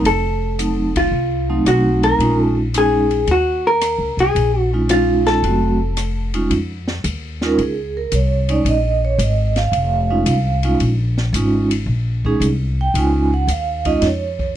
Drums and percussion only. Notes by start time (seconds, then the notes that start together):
0.05 ride
0.59 hi-hat pedal, ride
0.96 kick, ride
1.66 cross-stick, hi-hat pedal, ride
2.03 ride
2.20 ride
2.74 hi-hat pedal, ride
3.11 ride
3.27 ride
3.81 cross-stick, hi-hat pedal, ride
4.19 ride
4.36 ride
4.89 hi-hat pedal, ride
5.26 snare, ride
5.44 ride
5.97 cross-stick, hi-hat pedal, ride
6.34 ride
6.51 ride
6.88 snare
7.04 hi-hat pedal, ride
7.41 snare
7.58 ride
8.12 hi-hat pedal, ride
8.49 ride
8.66 ride
9.19 hi-hat pedal, ride
9.56 snare, ride
9.73 ride
10.26 hi-hat pedal, ride
10.63 ride
10.80 ride
11.17 snare
11.34 hi-hat pedal, ride
11.71 ride
12.25 kick
12.41 hi-hat pedal, ride
12.95 ride
13.48 hi-hat pedal, ride
13.85 kick, ride
14.02 snare, ride
14.39 kick